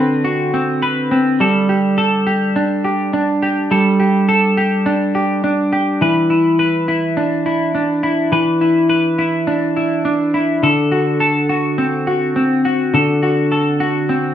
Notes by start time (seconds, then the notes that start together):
Already playing: D3 C4 F#4 B4
0.24 F#4
0.54 C4
0.82 B4
1.11 C4
1.40 G3 A4
1.69 G4
1.98 A4
2.27 G4
2.56 D4
2.84 G4
3.13 D4
3.42 G4
3.71 G3 A4
4.00 G4
4.29 A4
4.57 G4
4.86 D4
5.15 G4
5.44 D4
5.73 G4
6.01 E3 B4
6.30 E4
6.59 B4
6.88 E4
7.17 D4
7.46 E4
7.75 D4
8.03 E4
8.32 E3 B4
8.61 E4
8.89 B4
9.19 E4
9.47 D4
9.77 E4
10.05 D4
10.34 E4
10.63 D3 A4
10.92 F#4
11.20 A4
11.49 F#4
11.78 C4
12.07 F#4
12.36 C4
12.65 F#4
12.94 D3 A4
13.23 F#4
13.52 A4
13.80 F#4
14.09 C4